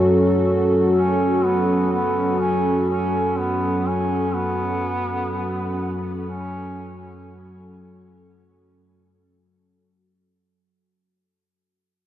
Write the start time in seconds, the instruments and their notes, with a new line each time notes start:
Already playing: synth drone F#2 F#3, analog synth pad C#4 F#4 A4
0.97 duduk C#4
1.45 duduk B3
1.92 duduk B3
2.39 duduk C#4
2.90 duduk C#4
3.38 duduk B3
3.88 duduk C#4
4.35 duduk B3
6.26 duduk C#4